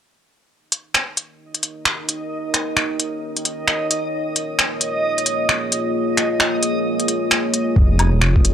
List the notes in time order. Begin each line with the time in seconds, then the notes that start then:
0.50 D#4 A#4 C#5 D#5 G5
0.72 closed hi-hat
0.94 finger snap
1.17 closed hi-hat
1.54 closed hi-hat
1.63 closed hi-hat
1.85 finger snap
2.09 closed hi-hat
2.54 finger snap, closed hi-hat
2.77 finger snap
3.00 closed hi-hat
3.37 closed hi-hat
3.45 closed hi-hat
3.68 finger snap
3.91 closed hi-hat
4.12 A#3 F4 G#4
4.36 closed hi-hat
4.59 finger snap
4.81 closed hi-hat
5.18 closed hi-hat
5.26 closed hi-hat
5.49 finger snap
5.72 closed hi-hat
6.17 finger snap, closed hi-hat
6.40 finger snap
6.63 closed hi-hat
7.00 closed hi-hat
7.08 closed hi-hat
7.31 finger snap
7.54 closed hi-hat
7.76 F1 F4 C5 D#5 G#5, kick
7.99 closed hi-hat, low woodblock
8.14 D#1
8.21 F1, finger snap
8.36 kick
8.45 closed hi-hat